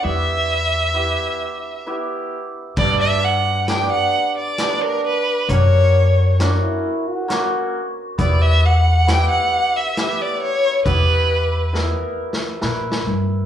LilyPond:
<<
  \new Staff \with { instrumentName = "Violin" } { \time 3/4 \tempo 4 = 67 e''2 r4 | d''16 e''16 fis''8 g''16 fis''8 d''8 ais'16 b'8 | cis''4 r2 | d''16 e''16 fis''8 g''16 fis''8 e''8 d''16 cis''8 |
b'4 r2 | }
  \new Staff \with { instrumentName = "Hammered dulcimer" } { \time 3/4 <b e' g'>8 r8 <b e' g'>8 r8 <b e' g'>8 r8 | <b d' g'>8 r8 <b d' g'>8 r8 <b d' g'>8 r8 | <ais cis' fis'>8 r8 <ais cis' fis'>8 r8 <ais cis' fis'>8 r8 | <b e' g'>8 r8 <b e' g'>8 r8 <b e' g'>8 r8 |
<b e' g'>8 r8 <b e' ais'>8 r8 <e' ais' b'>8 r8 | }
  \new Staff \with { instrumentName = "Trombone" } { \time 3/4 r2. | r2. | r4 d'16 e'8 fis'4 r16 | r2. |
r2. | }
  \new Staff \with { instrumentName = "Upright bass" } { \clef bass \time 3/4 e,2 r4 | g,2 r4 | fis,2 r4 | e,2 r4 |
e,2 ais,8 g,8 | }
  \new DrumStaff \with { instrumentName = "Drums" } \drummode { \time 3/4 r4 r4 r4 | <cymc bd>4 <hh sn>4 <hh sn>4 | <hh bd>4 <hh sn>4 <hh sn>4 | <hh bd>4 <hh sn>4 <hh sn>4 |
<hh bd>4 \tuplet 3/2 { sn8 r8 sn8 sn8 sn8 r8 } | }
>>